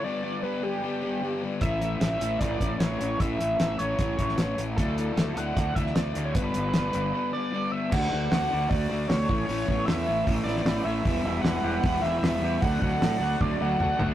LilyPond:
<<
  \new Staff \with { instrumentName = "Analog synth lead" } { \time 4/4 \key a \mixolydian \tempo 4 = 153 d''4 b'8 g'2 r8 | e''4 e''4 d''4 cis''4 | e''4 e''8 cis''2 r8 | a'8. a'8. fis''4 e''8 d''8. cis''16 |
b'2~ b'8 d''4 e''8 | fis''4 fis''4 d''4 cis''4 | cis''4 e''4 r8 d''4 e''8~ | e''4 fis''4 fis''8 e''4. |
fis''8 fis''4. d''8 fis''8 fis''8. r16 | }
  \new Staff \with { instrumentName = "Analog synth pad" } { \time 4/4 \key a \mixolydian r1 | r1 | r1 | r1 |
r1 | r1 | r1 | <g' b' e'' b''>1 |
<fis' a' d'' a''>1 | }
  \new Staff \with { instrumentName = "Clean electric guitar" } { \time 4/4 \key a \mixolydian r1 | r1 | r1 | r1 |
r1 | d8 a8 fis'8 d''8 fis'8 a8 d'8 a8 | a8 b8 a'8 cis''8 a'8 b8 e'8 cis''8 | e8 e8 e'8 g'8 e'8 e8 b8 g'8 |
d8 fis8 d'8 fis'8 d'8 fis8 a8 fis'8 | }
  \new Staff \with { instrumentName = "Overdriven electric guitar" } { \time 4/4 \key a \mixolydian <g, d g b d' g'>8 <g b d' g'>8 <g b d' g'>8 <g, d g b d' g'>8 <g b d' g'>8 <g b d' g'>8 <g, d g b d' g'>8 <g b d' g'>8 | <a, e a cis' e'>8 <a cis' e'>8 <e a cis' e'>8 <a, e a cis' e'>8 <e a cis' e'>8 <a cis' e'>8 <a, e a cis' e'>8 <a cis' e'>8 | <a, e a cis' e'>8 <a cis' e'>8 <e a cis' e'>8 <a, e a cis' e'>8 <e a cis' e'>8 <a cis' e'>8 <a, e a cis' e'>8 <a cis' e'>8 | <d a d' e'>8 <a d' e'>8 <d a d' e'>8 <d a d' e'>8 <d a d' e'>8 <a d' e'>8 <d a d' e'>8 <a d' e'>8 |
<g, d g b d'>8 <g b d'>8 <d g b d'>8 <g, d g b d'>8 <d g b d'>8 <g b d'>8 <g, d g b d'>8 <g b d'>8 | <d a d' fis'>8 <a d' fis'>8 <d a d' fis'>8 <a d' fis'>8 <d a d' fis'>8 <a d' fis'>8 <d a d' fis'>8 <a, e a cis' e'>8 | <a, e a cis' e'>8 <a cis' e'>8 <a, e a cis' e'>8 <a cis' e'>8 <e a cis' e'>8 <a cis' e'>8 <a, e a cis' e'>8 <a cis' e'>8 | <e g b e'>8 <g b e'>8 <e g b e'>8 <g b e'>8 <e g b e'>8 <g b e'>8 <e g b e'>8 <g b e'>8 |
<d fis a d'>8 <fis a d'>8 <d fis a d'>8 <fis a d'>8 <d fis a d'>8 <fis a d'>8 <d fis a d'>8 <fis a d'>8 | }
  \new Staff \with { instrumentName = "Fingered electric bass" } { \clef bass \time 4/4 \key a \mixolydian r1 | a,,4 a,,8 a,,8 a,,8 a,,8 a,,8 a,,8 | a,,8 a,,8 a,,8 a,,8 a,,8 a,,8 a,,8 a,,8 | d,4 d,8 d,8 d,8 d,8 d,8 d,8 |
g,,8 g,,8 g,,8 g,,8 r2 | d,8 d,8 d,8 d,8 d,8 d,8 d,8 a,,8 | a,,8 a,,8 e,8 a,,8 a,,8 a,,8 a,,8 a,,8 | e,,8 e,,8 e,,8 e,,8 e,,8 e,,8 e,,8 e,8 |
d,8 d,8 a,8 d,8 d,8 d,8 d,8 d,8 | }
  \new DrumStaff \with { instrumentName = "Drums" } \drummode { \time 4/4 r4 r4 r4 r4 | <hh bd>8 hh8 <hh sn>8 hh8 <hh bd>8 <hh bd>8 <hh sn>8 hh8 | <hh bd>8 hh8 <hh sn>8 hh8 <hh bd>8 <hh bd>16 sn16 <hh sn>8 hh8 | <hh bd>8 hh8 <hh sn>8 hh8 <hh bd>8 <hh bd>16 sn16 <hh sn>8 hh8 |
<hh bd>8 hh8 <hh sn>8 hh8 r4 r4 | <cymc bd>4 <hho sn>4 <hho bd>4 <hho sn>8 bd8 | hho8 bd8 <hho sn>4 <hho bd>8 sn16 sn16 <hho sn>4 | <hho bd>4 <hho sn>4 <hho bd>8 sn8 <hho sn>4 |
<hho bd>8 bd8 <hho sn>4 bd4 toml8 tomfh8 | }
>>